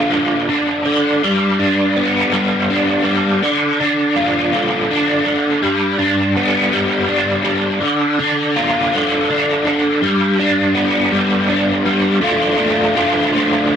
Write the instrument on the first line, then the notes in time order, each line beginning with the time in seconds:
overdriven electric guitar
Already playing: D4 F4
0.10 D3
0.49 D4
0.86 D3
1.24 G3
1.59 D4
1.97 B3
2.33 G3
2.70 D4
3.04 G3
3.43 D3
3.80 D4
4.16 F4
4.54 D3
4.91 D4
5.26 D3
5.62 G3
5.98 D4
6.37 B3
6.73 G3
7.08 D4
7.44 G3
7.81 D3
8.19 D4
8.56 F4
8.94 D3
9.30 D4
9.66 D3
10.02 G3
10.40 D4
10.76 B3
11.12 G3
11.49 D4
11.86 G3
12.21 D3 A3 D4 F4
12.58 A3 D4 F4
12.95 D3 A3 D4 F4
13.32 D3 A3 D4 F4